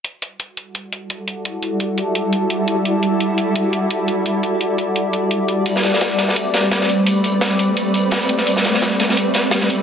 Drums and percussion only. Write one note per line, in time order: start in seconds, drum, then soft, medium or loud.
0.04 closed hi-hat medium
0.22 closed hi-hat medium
0.40 closed hi-hat medium
0.57 closed hi-hat medium
0.75 closed hi-hat medium
0.93 closed hi-hat medium
1.10 closed hi-hat medium
1.28 closed hi-hat medium
1.45 closed hi-hat medium
1.63 closed hi-hat medium
1.80 closed hi-hat medium
1.98 closed hi-hat medium
2.15 closed hi-hat medium
2.33 closed hi-hat medium
2.50 closed hi-hat medium
2.68 closed hi-hat medium
2.85 closed hi-hat medium
3.03 closed hi-hat medium
3.20 closed hi-hat medium
3.38 closed hi-hat medium
3.56 closed hi-hat medium
3.73 closed hi-hat medium
3.90 closed hi-hat medium
4.08 closed hi-hat medium
4.26 closed hi-hat medium
4.43 closed hi-hat medium
4.61 closed hi-hat medium
4.78 closed hi-hat medium
4.96 closed hi-hat medium
5.13 closed hi-hat medium
5.31 closed hi-hat medium
5.48 closed hi-hat medium
5.66 closed hi-hat medium
5.76 snare soft
5.83 snare soft
5.83 closed hi-hat medium
5.93 snare soft
6.01 snare loud
6.01 closed hi-hat medium
6.18 snare medium
6.18 closed hi-hat medium
6.28 snare medium
6.36 closed hi-hat medium
6.54 snare medium
6.54 closed hi-hat medium
6.71 snare loud
6.71 closed hi-hat medium
6.81 snare soft
6.89 closed hi-hat medium
7.06 closed hi-hat medium
7.24 closed hi-hat medium
7.41 snare loud
7.41 closed hi-hat medium
7.59 closed hi-hat medium
7.77 closed hi-hat medium
7.94 closed hi-hat medium
8.11 snare loud
8.11 closed hi-hat medium
8.11 open hi-hat medium
8.29 closed hi-hat medium
8.38 snare soft
8.47 closed hi-hat medium
8.57 snare soft
8.65 snare soft
8.65 closed hi-hat medium
8.74 snare soft
8.82 snare loud
8.82 closed hi-hat medium
9.00 snare medium
9.00 closed hi-hat medium
9.09 snare soft
9.17 closed hi-hat medium
9.34 snare medium
9.34 closed hi-hat medium
9.51 snare loud
9.51 closed hi-hat medium
9.61 snare soft
9.70 closed hi-hat medium